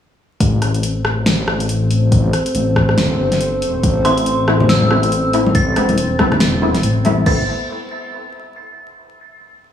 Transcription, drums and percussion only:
0.40 kick, closed hi-hat
0.62 cross-stick, closed hi-hat
0.74 closed hi-hat
0.83 closed hi-hat
1.05 cross-stick
1.26 snare, closed hi-hat
1.48 cross-stick
1.60 closed hi-hat
1.69 closed hi-hat
1.91 closed hi-hat
2.12 kick, closed hi-hat
2.33 cross-stick, closed hi-hat
2.46 closed hi-hat
2.55 closed hi-hat
2.76 kick, cross-stick
2.89 cross-stick
2.98 snare, closed hi-hat
3.32 snare, closed hi-hat
3.41 closed hi-hat
3.62 closed hi-hat
3.83 kick, closed hi-hat
4.05 cross-stick, closed hi-hat
4.18 closed hi-hat
4.26 closed hi-hat
4.48 cross-stick
4.60 low conga
4.69 snare, closed hi-hat
4.82 high conga
4.91 cross-stick
5.03 closed hi-hat
5.12 closed hi-hat
5.33 closed hi-hat
5.46 high conga
5.55 kick, closed hi-hat
5.76 cross-stick, closed hi-hat
5.89 closed hi-hat, high conga
5.98 closed hi-hat
6.19 kick, cross-stick, high conga
6.32 cross-stick, low conga
6.40 snare, closed hi-hat
6.62 high conga
6.75 snare, closed hi-hat
6.83 closed hi-hat
7.05 closed hi-hat, high conga
7.26 kick, crash

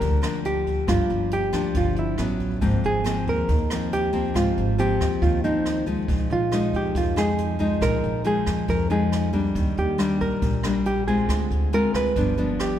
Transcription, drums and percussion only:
0.01 kick, closed hi-hat
0.23 cross-stick, closed hi-hat
0.45 closed hi-hat
0.66 kick, closed hi-hat
0.88 kick, cross-stick, closed hi-hat
1.10 closed hi-hat
1.31 closed hi-hat
1.53 kick, cross-stick, closed hi-hat
1.74 kick, closed hi-hat
1.96 closed hi-hat
2.18 cross-stick, closed hi-hat
2.40 kick, closed hi-hat
2.62 kick, closed hi-hat
2.84 closed hi-hat
3.05 cross-stick, closed hi-hat
3.27 kick, closed hi-hat
3.49 kick, closed hi-hat
3.70 cross-stick, closed hi-hat
3.93 closed hi-hat
4.14 kick, closed hi-hat
4.35 kick, cross-stick, closed hi-hat
4.58 closed hi-hat
4.79 closed hi-hat
5.00 kick, cross-stick, closed hi-hat
5.22 kick, closed hi-hat
5.44 closed hi-hat
5.66 cross-stick, closed hi-hat
5.87 kick, closed hi-hat
6.08 kick, closed hi-hat
6.31 closed hi-hat
6.52 cross-stick, closed hi-hat
6.73 kick, closed hi-hat
6.95 kick, closed hi-hat
7.17 cross-stick, closed hi-hat
7.38 closed hi-hat
7.60 kick, closed hi-hat
7.82 kick, cross-stick, closed hi-hat
8.03 closed hi-hat
8.25 closed hi-hat
8.46 kick, cross-stick, closed hi-hat
8.68 kick, closed hi-hat
8.90 closed hi-hat
9.12 cross-stick, closed hi-hat
9.34 kick, closed hi-hat
9.55 kick, closed hi-hat
9.77 closed hi-hat
9.99 cross-stick, closed hi-hat
10.20 kick, closed hi-hat
10.42 kick, closed hi-hat
10.63 cross-stick, closed hi-hat
10.85 closed hi-hat
11.07 kick, closed hi-hat
11.29 kick, cross-stick, closed hi-hat
11.51 closed hi-hat
11.73 closed hi-hat
11.94 kick, cross-stick, closed hi-hat
12.16 kick, closed hi-hat
12.38 closed hi-hat
12.60 cross-stick, closed hi-hat

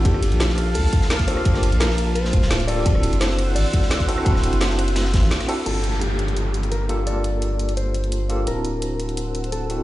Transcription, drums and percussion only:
0.05 kick, closed hi-hat, ride
0.14 cross-stick
0.23 closed hi-hat, ride
0.32 closed hi-hat
0.40 snare, closed hi-hat, ride
0.49 snare
0.58 cross-stick, closed hi-hat, ride
0.74 closed hi-hat, open hi-hat
0.93 kick, closed hi-hat, ride
1.01 snare
1.10 snare, closed hi-hat, ride
1.19 kick, snare, closed hi-hat
1.28 cross-stick, open hi-hat, ride
1.37 cross-stick
1.45 kick, closed hi-hat, ride
1.54 cross-stick, snare
1.63 closed hi-hat, ride
1.72 closed hi-hat
1.80 snare, closed hi-hat, ride
1.90 snare
1.98 closed hi-hat, ride
2.15 closed hi-hat, ride
2.25 snare
2.33 kick, closed hi-hat, ride
2.42 snare
2.51 snare, closed hi-hat, ride
2.60 closed hi-hat, ride
2.68 cross-stick, open hi-hat, ride
2.86 kick, closed hi-hat, ride
2.95 cross-stick
3.03 closed hi-hat, ride
3.13 closed hi-hat
3.21 snare, closed hi-hat, ride
3.30 snare
3.39 cross-stick, closed hi-hat, ride
3.56 closed hi-hat, open hi-hat
3.73 kick, closed hi-hat, ride
3.82 snare
3.90 snare, closed hi-hat, ride
4.00 kick, snare, closed hi-hat
4.09 cross-stick, open hi-hat, ride
4.18 cross-stick
4.26 kick, closed hi-hat, ride
4.35 cross-stick, snare
4.43 closed hi-hat, ride
4.53 closed hi-hat
4.61 snare, closed hi-hat, ride
4.69 snare
4.78 cross-stick, closed hi-hat, ride
4.88 closed hi-hat
4.96 snare, closed hi-hat, ride
5.05 snare
5.14 kick, snare, closed hi-hat, ride
5.23 snare, closed hi-hat
5.31 snare, closed hi-hat, ride
5.40 cross-stick, snare, closed hi-hat
5.49 cross-stick, open hi-hat, ride
5.66 closed hi-hat, crash
5.84 closed hi-hat
6.01 closed hi-hat
6.19 closed hi-hat
6.28 closed hi-hat
6.37 closed hi-hat
6.54 closed hi-hat
6.63 closed hi-hat
6.72 closed hi-hat
6.89 closed hi-hat
7.07 closed hi-hat
7.24 closed hi-hat
7.42 closed hi-hat
7.59 closed hi-hat
7.69 closed hi-hat
7.77 closed hi-hat
7.94 closed hi-hat
8.04 closed hi-hat
8.12 closed hi-hat
8.30 closed hi-hat
8.47 closed hi-hat
8.65 closed hi-hat
8.82 closed hi-hat
9.00 closed hi-hat
9.09 closed hi-hat
9.17 closed hi-hat
9.35 closed hi-hat
9.44 closed hi-hat
9.52 closed hi-hat
9.70 closed hi-hat

